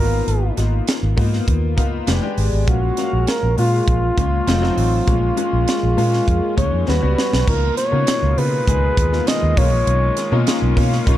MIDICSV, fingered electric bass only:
0, 0, Header, 1, 2, 480
1, 0, Start_track
1, 0, Tempo, 599401
1, 222, Time_signature, 4, 2, 24, 8
1, 8950, End_track
2, 0, Start_track
2, 0, Title_t, "Fingered electric bass"
2, 0, Program_c, 0, 33
2, 0, Note_on_c, 0, 32, 86
2, 157, Note_off_c, 0, 32, 0
2, 219, Note_on_c, 0, 32, 89
2, 395, Note_off_c, 0, 32, 0
2, 461, Note_on_c, 0, 32, 88
2, 636, Note_off_c, 0, 32, 0
2, 822, Note_on_c, 0, 32, 87
2, 910, Note_off_c, 0, 32, 0
2, 942, Note_on_c, 0, 44, 80
2, 1117, Note_off_c, 0, 44, 0
2, 1181, Note_on_c, 0, 39, 78
2, 1422, Note_off_c, 0, 39, 0
2, 1422, Note_on_c, 0, 37, 90
2, 1597, Note_off_c, 0, 37, 0
2, 1662, Note_on_c, 0, 29, 85
2, 1750, Note_off_c, 0, 29, 0
2, 1903, Note_on_c, 0, 32, 91
2, 1990, Note_off_c, 0, 32, 0
2, 2024, Note_on_c, 0, 32, 85
2, 2112, Note_off_c, 0, 32, 0
2, 2144, Note_on_c, 0, 34, 94
2, 2319, Note_off_c, 0, 34, 0
2, 2506, Note_on_c, 0, 34, 84
2, 2593, Note_off_c, 0, 34, 0
2, 2745, Note_on_c, 0, 34, 94
2, 2833, Note_off_c, 0, 34, 0
2, 2867, Note_on_c, 0, 46, 83
2, 3041, Note_off_c, 0, 46, 0
2, 3105, Note_on_c, 0, 34, 76
2, 3280, Note_off_c, 0, 34, 0
2, 3343, Note_on_c, 0, 37, 85
2, 3519, Note_off_c, 0, 37, 0
2, 3581, Note_on_c, 0, 29, 102
2, 3757, Note_off_c, 0, 29, 0
2, 3823, Note_on_c, 0, 33, 92
2, 3998, Note_off_c, 0, 33, 0
2, 4065, Note_on_c, 0, 34, 91
2, 4240, Note_off_c, 0, 34, 0
2, 4428, Note_on_c, 0, 34, 91
2, 4514, Note_off_c, 0, 34, 0
2, 4670, Note_on_c, 0, 34, 91
2, 4756, Note_off_c, 0, 34, 0
2, 4788, Note_on_c, 0, 46, 79
2, 4962, Note_off_c, 0, 46, 0
2, 5028, Note_on_c, 0, 41, 76
2, 5115, Note_off_c, 0, 41, 0
2, 5266, Note_on_c, 0, 37, 88
2, 5354, Note_off_c, 0, 37, 0
2, 5389, Note_on_c, 0, 41, 72
2, 5475, Note_off_c, 0, 41, 0
2, 5512, Note_on_c, 0, 39, 86
2, 5597, Note_off_c, 0, 39, 0
2, 5631, Note_on_c, 0, 37, 89
2, 5716, Note_off_c, 0, 37, 0
2, 5871, Note_on_c, 0, 35, 78
2, 5957, Note_off_c, 0, 35, 0
2, 5985, Note_on_c, 0, 37, 96
2, 6160, Note_off_c, 0, 37, 0
2, 6348, Note_on_c, 0, 49, 93
2, 6434, Note_off_c, 0, 49, 0
2, 6587, Note_on_c, 0, 37, 93
2, 6674, Note_off_c, 0, 37, 0
2, 6704, Note_on_c, 0, 49, 82
2, 6879, Note_off_c, 0, 49, 0
2, 6947, Note_on_c, 0, 37, 86
2, 7121, Note_off_c, 0, 37, 0
2, 7186, Note_on_c, 0, 39, 82
2, 7361, Note_off_c, 0, 39, 0
2, 7548, Note_on_c, 0, 39, 80
2, 7635, Note_off_c, 0, 39, 0
2, 7663, Note_on_c, 0, 35, 97
2, 7785, Note_off_c, 0, 35, 0
2, 7785, Note_on_c, 0, 34, 85
2, 7872, Note_off_c, 0, 34, 0
2, 7905, Note_on_c, 0, 35, 98
2, 8079, Note_off_c, 0, 35, 0
2, 8264, Note_on_c, 0, 47, 86
2, 8352, Note_off_c, 0, 47, 0
2, 8505, Note_on_c, 0, 35, 86
2, 8592, Note_off_c, 0, 35, 0
2, 8623, Note_on_c, 0, 47, 91
2, 8799, Note_off_c, 0, 47, 0
2, 8863, Note_on_c, 0, 35, 84
2, 8950, Note_off_c, 0, 35, 0
2, 8950, End_track
0, 0, End_of_file